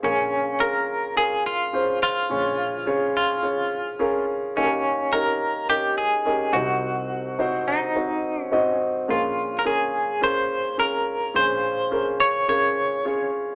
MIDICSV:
0, 0, Header, 1, 3, 480
1, 0, Start_track
1, 0, Key_signature, -5, "minor"
1, 0, Tempo, 566091
1, 30, Time_signature, 4, 2, 24, 8
1, 11489, End_track
2, 0, Start_track
2, 0, Title_t, "Clean electric guitar"
2, 0, Program_c, 0, 27
2, 37, Note_on_c, 0, 61, 75
2, 512, Note_on_c, 0, 70, 86
2, 528, Note_off_c, 0, 61, 0
2, 991, Note_off_c, 0, 70, 0
2, 995, Note_on_c, 0, 68, 82
2, 1216, Note_off_c, 0, 68, 0
2, 1241, Note_on_c, 0, 65, 85
2, 1682, Note_off_c, 0, 65, 0
2, 1720, Note_on_c, 0, 65, 80
2, 2676, Note_off_c, 0, 65, 0
2, 2686, Note_on_c, 0, 65, 74
2, 3604, Note_off_c, 0, 65, 0
2, 3874, Note_on_c, 0, 61, 80
2, 4347, Note_on_c, 0, 70, 85
2, 4366, Note_off_c, 0, 61, 0
2, 4826, Note_off_c, 0, 70, 0
2, 4830, Note_on_c, 0, 67, 84
2, 5053, Note_off_c, 0, 67, 0
2, 5069, Note_on_c, 0, 68, 77
2, 5539, Note_on_c, 0, 66, 78
2, 5564, Note_off_c, 0, 68, 0
2, 6506, Note_off_c, 0, 66, 0
2, 6510, Note_on_c, 0, 63, 62
2, 7146, Note_off_c, 0, 63, 0
2, 7146, Note_on_c, 0, 61, 62
2, 7435, Note_off_c, 0, 61, 0
2, 7720, Note_on_c, 0, 65, 66
2, 8130, Note_on_c, 0, 70, 48
2, 8147, Note_off_c, 0, 65, 0
2, 8189, Note_off_c, 0, 70, 0
2, 8196, Note_on_c, 0, 68, 67
2, 8676, Note_off_c, 0, 68, 0
2, 8679, Note_on_c, 0, 72, 80
2, 9150, Note_off_c, 0, 72, 0
2, 9154, Note_on_c, 0, 70, 77
2, 9630, Note_off_c, 0, 70, 0
2, 9634, Note_on_c, 0, 72, 81
2, 10344, Note_off_c, 0, 72, 0
2, 10348, Note_on_c, 0, 73, 87
2, 10581, Note_off_c, 0, 73, 0
2, 10591, Note_on_c, 0, 73, 84
2, 11275, Note_off_c, 0, 73, 0
2, 11489, End_track
3, 0, Start_track
3, 0, Title_t, "Grand piano"
3, 0, Program_c, 1, 0
3, 0, Control_c, 1, 64, 127
3, 22, Note_on_c, 1, 61, 53
3, 26, Note_on_c, 1, 65, 51
3, 28, Note_on_c, 1, 34, 50
3, 28, Note_on_c, 1, 68, 53
3, 29, Note_on_c, 1, 46, 49
3, 31, Note_on_c, 1, 70, 63
3, 42, Control_c, 1, 64, 0
3, 193, Control_c, 1, 64, 127
3, 396, Note_off_c, 1, 61, 0
3, 399, Note_off_c, 1, 65, 0
3, 400, Note_off_c, 1, 68, 0
3, 401, Note_off_c, 1, 70, 0
3, 503, Note_on_c, 1, 61, 59
3, 506, Note_on_c, 1, 65, 54
3, 508, Note_on_c, 1, 68, 53
3, 513, Note_on_c, 1, 70, 64
3, 877, Note_off_c, 1, 61, 0
3, 879, Note_off_c, 1, 65, 0
3, 879, Note_off_c, 1, 68, 0
3, 882, Note_off_c, 1, 70, 0
3, 984, Note_on_c, 1, 61, 50
3, 985, Note_on_c, 1, 65, 55
3, 989, Note_on_c, 1, 68, 45
3, 993, Note_on_c, 1, 70, 64
3, 1357, Note_off_c, 1, 61, 0
3, 1358, Note_off_c, 1, 65, 0
3, 1360, Note_off_c, 1, 68, 0
3, 1362, Note_off_c, 1, 70, 0
3, 1467, Note_on_c, 1, 61, 56
3, 1470, Note_on_c, 1, 65, 53
3, 1473, Note_on_c, 1, 68, 50
3, 1475, Note_on_c, 1, 72, 68
3, 1839, Note_off_c, 1, 61, 0
3, 1841, Note_off_c, 1, 65, 0
3, 1842, Note_off_c, 1, 68, 0
3, 1843, Note_off_c, 1, 72, 0
3, 1915, Note_off_c, 1, 34, 0
3, 1916, Note_off_c, 1, 46, 0
3, 1948, Note_on_c, 1, 61, 64
3, 1948, Note_on_c, 1, 65, 51
3, 1950, Note_on_c, 1, 46, 48
3, 1952, Note_on_c, 1, 34, 50
3, 1952, Note_on_c, 1, 68, 54
3, 1954, Note_on_c, 1, 73, 64
3, 2319, Note_off_c, 1, 61, 0
3, 2319, Note_off_c, 1, 65, 0
3, 2322, Note_off_c, 1, 68, 0
3, 2322, Note_off_c, 1, 73, 0
3, 2427, Note_on_c, 1, 61, 70
3, 2429, Note_on_c, 1, 65, 68
3, 2433, Note_on_c, 1, 68, 66
3, 2435, Note_on_c, 1, 73, 84
3, 2799, Note_off_c, 1, 61, 0
3, 2800, Note_off_c, 1, 65, 0
3, 2802, Note_off_c, 1, 68, 0
3, 2803, Note_off_c, 1, 73, 0
3, 2903, Note_on_c, 1, 61, 54
3, 2906, Note_on_c, 1, 65, 50
3, 2908, Note_on_c, 1, 68, 52
3, 2912, Note_on_c, 1, 73, 61
3, 3277, Note_off_c, 1, 61, 0
3, 3278, Note_off_c, 1, 65, 0
3, 3280, Note_off_c, 1, 68, 0
3, 3281, Note_off_c, 1, 73, 0
3, 3386, Note_on_c, 1, 61, 77
3, 3389, Note_on_c, 1, 65, 62
3, 3391, Note_on_c, 1, 68, 68
3, 3393, Note_on_c, 1, 70, 79
3, 3758, Note_off_c, 1, 61, 0
3, 3760, Note_off_c, 1, 65, 0
3, 3761, Note_off_c, 1, 68, 0
3, 3762, Note_off_c, 1, 70, 0
3, 3836, Note_off_c, 1, 46, 0
3, 3837, Note_off_c, 1, 34, 0
3, 3867, Note_on_c, 1, 61, 60
3, 3869, Note_on_c, 1, 51, 48
3, 3869, Note_on_c, 1, 63, 55
3, 3871, Note_on_c, 1, 39, 55
3, 3872, Note_on_c, 1, 67, 58
3, 3874, Note_on_c, 1, 69, 53
3, 3881, Control_c, 1, 64, 0
3, 3927, Note_off_c, 1, 69, 0
3, 3930, Note_on_c, 1, 70, 66
3, 4023, Control_c, 1, 64, 127
3, 4239, Note_off_c, 1, 61, 0
3, 4240, Note_off_c, 1, 63, 0
3, 4241, Note_off_c, 1, 67, 0
3, 4270, Note_off_c, 1, 70, 0
3, 4347, Note_on_c, 1, 61, 63
3, 4350, Note_on_c, 1, 63, 55
3, 4352, Note_on_c, 1, 67, 55
3, 4353, Note_on_c, 1, 70, 69
3, 4719, Note_off_c, 1, 61, 0
3, 4720, Note_off_c, 1, 63, 0
3, 4721, Note_off_c, 1, 67, 0
3, 4722, Note_off_c, 1, 70, 0
3, 4825, Note_on_c, 1, 61, 57
3, 4827, Note_on_c, 1, 63, 52
3, 4830, Note_on_c, 1, 67, 52
3, 4834, Note_on_c, 1, 70, 62
3, 5198, Note_off_c, 1, 61, 0
3, 5199, Note_off_c, 1, 63, 0
3, 5200, Note_off_c, 1, 67, 0
3, 5202, Note_off_c, 1, 70, 0
3, 5301, Note_on_c, 1, 61, 59
3, 5306, Note_on_c, 1, 63, 58
3, 5308, Note_on_c, 1, 67, 56
3, 5310, Note_on_c, 1, 70, 67
3, 5515, Note_off_c, 1, 51, 0
3, 5516, Note_off_c, 1, 39, 0
3, 5536, Note_off_c, 1, 63, 0
3, 5545, Note_off_c, 1, 61, 0
3, 5546, Note_on_c, 1, 60, 64
3, 5549, Note_off_c, 1, 67, 0
3, 5549, Note_on_c, 1, 36, 52
3, 5549, Note_on_c, 1, 63, 58
3, 5550, Note_off_c, 1, 70, 0
3, 5550, Note_on_c, 1, 48, 50
3, 5550, Note_on_c, 1, 66, 56
3, 5554, Note_on_c, 1, 72, 67
3, 5562, Control_c, 1, 64, 0
3, 5704, Control_c, 1, 64, 127
3, 6124, Note_off_c, 1, 60, 0
3, 6125, Note_off_c, 1, 63, 0
3, 6126, Note_off_c, 1, 66, 0
3, 6128, Note_off_c, 1, 72, 0
3, 6264, Note_on_c, 1, 60, 75
3, 6265, Note_on_c, 1, 63, 70
3, 6271, Note_on_c, 1, 66, 67
3, 6273, Note_on_c, 1, 72, 81
3, 6637, Note_off_c, 1, 60, 0
3, 6637, Note_off_c, 1, 63, 0
3, 6640, Note_off_c, 1, 66, 0
3, 6642, Note_off_c, 1, 72, 0
3, 6744, Note_on_c, 1, 60, 57
3, 6748, Note_on_c, 1, 63, 48
3, 6750, Note_on_c, 1, 66, 51
3, 6755, Note_on_c, 1, 72, 60
3, 7117, Note_off_c, 1, 60, 0
3, 7119, Note_off_c, 1, 63, 0
3, 7120, Note_off_c, 1, 66, 0
3, 7122, Note_off_c, 1, 72, 0
3, 7221, Note_on_c, 1, 60, 71
3, 7225, Note_on_c, 1, 63, 67
3, 7227, Note_on_c, 1, 66, 68
3, 7230, Note_on_c, 1, 75, 75
3, 7435, Note_off_c, 1, 36, 0
3, 7435, Note_off_c, 1, 48, 0
3, 7596, Note_off_c, 1, 60, 0
3, 7597, Note_off_c, 1, 63, 0
3, 7598, Note_off_c, 1, 66, 0
3, 7600, Note_off_c, 1, 75, 0
3, 7699, Note_on_c, 1, 61, 60
3, 7702, Note_on_c, 1, 65, 56
3, 7705, Note_on_c, 1, 34, 49
3, 7705, Note_on_c, 1, 46, 50
3, 7706, Note_on_c, 1, 68, 53
3, 7707, Note_on_c, 1, 70, 61
3, 7719, Control_c, 1, 64, 0
3, 7889, Control_c, 1, 64, 127
3, 8074, Note_off_c, 1, 61, 0
3, 8076, Note_off_c, 1, 65, 0
3, 8078, Note_off_c, 1, 68, 0
3, 8078, Note_off_c, 1, 70, 0
3, 8178, Note_on_c, 1, 61, 61
3, 8183, Note_on_c, 1, 65, 57
3, 8188, Note_on_c, 1, 68, 56
3, 8188, Note_on_c, 1, 70, 69
3, 8554, Note_off_c, 1, 61, 0
3, 8556, Note_off_c, 1, 65, 0
3, 8559, Note_off_c, 1, 68, 0
3, 8559, Note_off_c, 1, 70, 0
3, 8658, Note_on_c, 1, 61, 59
3, 8660, Note_on_c, 1, 65, 47
3, 8662, Note_on_c, 1, 68, 51
3, 8666, Note_on_c, 1, 70, 65
3, 9034, Note_off_c, 1, 61, 0
3, 9035, Note_off_c, 1, 65, 0
3, 9036, Note_off_c, 1, 68, 0
3, 9038, Note_off_c, 1, 70, 0
3, 9137, Note_on_c, 1, 61, 60
3, 9141, Note_on_c, 1, 65, 53
3, 9143, Note_on_c, 1, 68, 53
3, 9146, Note_on_c, 1, 70, 65
3, 9513, Note_off_c, 1, 61, 0
3, 9515, Note_off_c, 1, 65, 0
3, 9516, Note_off_c, 1, 68, 0
3, 9518, Note_off_c, 1, 70, 0
3, 9593, Note_off_c, 1, 34, 0
3, 9593, Note_off_c, 1, 46, 0
3, 9617, Note_on_c, 1, 61, 65
3, 9618, Note_on_c, 1, 65, 54
3, 9621, Note_on_c, 1, 46, 52
3, 9622, Note_on_c, 1, 34, 48
3, 9624, Note_on_c, 1, 68, 54
3, 9626, Note_on_c, 1, 72, 65
3, 9993, Note_off_c, 1, 61, 0
3, 9994, Note_off_c, 1, 65, 0
3, 9997, Note_off_c, 1, 68, 0
3, 9998, Note_off_c, 1, 72, 0
3, 10098, Note_on_c, 1, 61, 65
3, 10102, Note_on_c, 1, 65, 55
3, 10103, Note_on_c, 1, 68, 60
3, 10107, Note_on_c, 1, 70, 69
3, 10473, Note_off_c, 1, 61, 0
3, 10475, Note_off_c, 1, 65, 0
3, 10476, Note_off_c, 1, 68, 0
3, 10478, Note_off_c, 1, 70, 0
3, 10580, Note_on_c, 1, 61, 60
3, 10583, Note_on_c, 1, 65, 51
3, 10586, Note_on_c, 1, 68, 51
3, 10589, Note_on_c, 1, 70, 61
3, 10955, Note_off_c, 1, 61, 0
3, 10956, Note_off_c, 1, 65, 0
3, 10957, Note_off_c, 1, 68, 0
3, 10959, Note_off_c, 1, 70, 0
3, 11065, Note_on_c, 1, 61, 61
3, 11067, Note_on_c, 1, 65, 60
3, 11071, Note_on_c, 1, 68, 58
3, 11075, Note_on_c, 1, 73, 69
3, 11437, Note_off_c, 1, 61, 0
3, 11438, Note_off_c, 1, 65, 0
3, 11440, Note_off_c, 1, 68, 0
3, 11442, Note_off_c, 1, 73, 0
3, 11489, Note_off_c, 1, 34, 0
3, 11489, Note_off_c, 1, 46, 0
3, 11489, End_track
0, 0, End_of_file